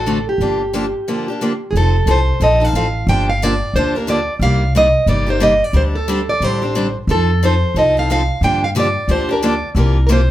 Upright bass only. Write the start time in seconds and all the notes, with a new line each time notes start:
Already playing: A1
0.38 G1
1.73 F1
2.06 C2
2.40 A#1
2.73 A1
3.07 G1
3.74 D2
4.39 C2
5.06 G1
5.73 D2
6.40 A1
7.07 F2
7.74 C2
8.41 G2
9.08 D2
9.75 C2